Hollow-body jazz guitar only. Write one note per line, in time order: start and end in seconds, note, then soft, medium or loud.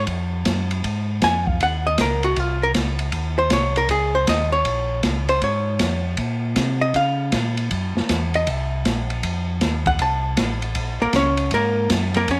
1.24 1.48 G#5 medium
1.48 1.60 F5 medium
1.63 1.86 F#5 medium
1.87 1.99 D#5 medium
2.01 2.24 A#4 medium
2.24 2.39 F#4 medium
2.39 2.62 F4 medium
2.63 2.71 A#4 medium
3.38 3.51 C5 medium
3.53 3.76 C#5 medium
3.77 3.90 A#4 medium
3.91 4.14 G#4 medium
4.15 4.27 C5 medium
4.29 4.52 D#5 medium
4.52 5.00 C#5 medium
5.29 5.42 C5 medium
5.44 6.02 C#5 medium
6.81 6.94 D#5 medium
6.96 7.54 F5 medium
8.35 8.50 D#5 medium
8.50 9.12 E5 medium
9.87 10.00 F#5 medium
10.02 10.60 A5 medium
11.02 11.14 A#3 medium
11.02 11.14 A#4 medium
11.16 11.50 C#4 medium
11.16 11.50 C#5 medium
11.54 11.89 A#3 medium
11.54 11.88 A#4 medium
12.16 12.29 A#3 medium
12.16 12.28 A#4 medium
12.31 12.40 C#4 medium
12.31 12.40 C#5 medium